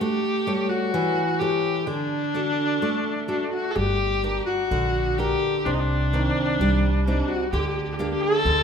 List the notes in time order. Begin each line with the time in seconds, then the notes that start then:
0.00 A3 G4
0.47 G3 A4 C#5
0.69 F#4
0.94 E3
1.39 G4 A4 C#5
1.87 D3 D4
2.34 D4 F#4 A4
2.82 A3
3.28 D4 F#4 A4
3.53 F#4
3.71 A4
3.75 G1 G3 G4
4.23 D4 A#4
4.46 F#4
4.71 A#1 D3
5.18 D4 G4 A#4
5.65 C2 C3 D4
5.74 D#4
5.79 D4
6.13 D#3 C4 D4
6.60 C2 G3
7.05 C4 D4 D#4
7.28 F#4
7.53 D2 D3 G4
7.60 G4
7.69 G4
7.77 G4
7.83 G4
7.91 G4
7.97 A#3 D4 G4
8.04 G4
8.10 G4
8.21 A4
8.45 D2 D3